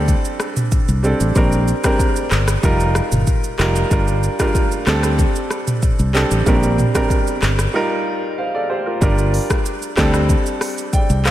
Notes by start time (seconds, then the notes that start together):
Already playing: D2 G3 C4 D4 A4
0.08 kick, shaker
0.25 shaker
0.40 cross-stick, shaker
0.56 mid tom, shaker
0.72 kick, shaker
0.88 C2, shaker
1.03 G3 C4 D4 A4, shaker
1.20 A1, shaker
1.35 A#1 G3 C4 D4 A#4, kick, shaker
1.52 shaker
1.68 shaker
1.83 G3 C4 D4 A#4, kick, cross-stick, shaker
1.99 kick, shaker
2.16 shaker
2.31 G1, cross-stick, clap, shaker
2.48 cross-stick, shaker
2.62 F1 G3 D#4 F4 A#4, kick, shaker
2.80 shaker
2.95 cross-stick, shaker
3.12 G1, mid tom, shaker
3.27 kick, shaker
3.44 shaker
3.58 F1 G3 D#4 F4 A#4, cross-stick, clap, shaker
3.76 shaker
3.90 G1 G3 D4 F4 A#4, kick, shaker
4.08 shaker
4.23 shaker
4.39 G3 D4 F4 A#4, kick, cross-stick, shaker
4.55 kick, shaker
4.72 shaker
4.86 D2 G3 C4 D4 A4, cross-stick, clap, shaker
5.03 cross-stick, shaker
5.19 kick, shaker
5.36 shaker
5.50 cross-stick, shaker
5.67 mid tom, shaker
5.83 kick, shaker
5.99 C2, shaker
6.13 G3 C4 D4 A4, clap, shaker
6.31 A1, shaker
6.45 A#1 G3 C4 D4 A#4, kick, shaker
6.63 shaker
6.78 mid tom, shaker
6.94 G3 C4 D4 A#4, kick, cross-stick, shaker
7.10 kick, shaker
7.27 shaker
7.42 G1, cross-stick, clap, shaker
7.59 cross-stick, shaker
7.73 G3 D#4 F4 A#4
8.38 C5 F5
8.55 A4 D5
8.70 G4 C5
8.86 F4 A#4
9.01 G1 G3 D4 F4 A#4, kick, shaker
9.18 shaker
9.34 open hi-hat
9.50 kick, cross-stick, shaker
9.66 shaker
9.82 shaker
9.96 D2 G3 C4 D4 A4, kick, cross-stick, clap, shaker
10.14 cross-stick, shaker
10.29 kick, shaker
10.46 shaker
10.61 cross-stick, open hi-hat, shaker
10.78 shaker
10.93 D5 G5, kick, shaker
11.10 C2, shaker
11.25 C5 F5, cross-stick, clap, shaker